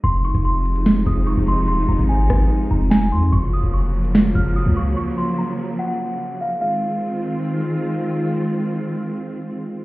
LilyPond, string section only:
\new Staff \with { instrumentName = "String section" } { \clef bass \time 4/4 \key f \phrygian \tempo 4 = 146 <c f aes ees'>1~ | <c f aes ees'>1 | <des f ges bes>1~ | <des f ges bes>1 |
<ees aes c' f'>1~ | <ees aes c' f'>1 | }